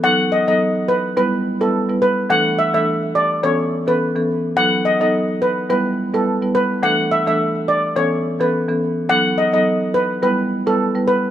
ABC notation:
X:1
M:4/4
L:1/16
Q:"Swing 16ths" 1/4=106
K:D
V:1 name="Steel pan"
f z ^d d2 z B2 B z2 A z2 B z | f z e e2 z d2 c z2 B z4 | f z ^d d2 z B2 B z2 A z2 B z | f z e e2 z d2 c z2 B z4 |
f z ^d d2 z B2 B z2 A z2 B z |]
V:2 name="Marimba"
[F,B,^DA]3 [F,B,DA] z4 [G,B,EB]3 [G,B,EB] z [G,B,EB] z2 | [E,A,DA]3 [E,A,DA] z4 [E,B,CA]3 [E,B,CA] z [E,B,CA] z2 | [F,B,^DA]3 [F,B,DA] z4 [G,B,EB]3 [G,B,EB] z [G,B,EB] z2 | [E,A,DA]3 [E,A,DA] z4 [E,B,CA]3 [E,B,CA] z [E,B,CA] z2 |
[F,B,^DA]3 [F,B,DA] z4 [G,B,EB]3 [G,B,EB] z [G,B,EB] z2 |]